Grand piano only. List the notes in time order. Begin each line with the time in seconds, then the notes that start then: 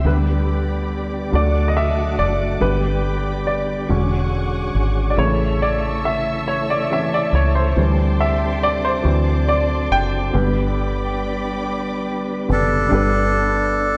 0.05 D3 G3 B3 B4
1.32 D3 F#3 A3 D5
1.68 D#5
1.77 E5
2.19 D5
2.61 D3 G3 B3 B4
3.47 D5
3.89 D3 F#3 G#3 C#4
5.10 D5
5.17 C#3 E3 A3 C#5
5.62 D5
6.05 E5
6.48 C#5
6.70 D5
6.91 E3 A3 C#4 E5
7.14 D5
7.35 C#5
7.55 C5
7.76 E3 G3 C4
8.21 E5
8.63 D5
8.85 C5
9.03 E3 F#3 C4
9.49 D5
9.92 G5
10.33 D3 G3 B3
12.49 D3 G3 B3
12.89 G2 D4 G4
12.94 B4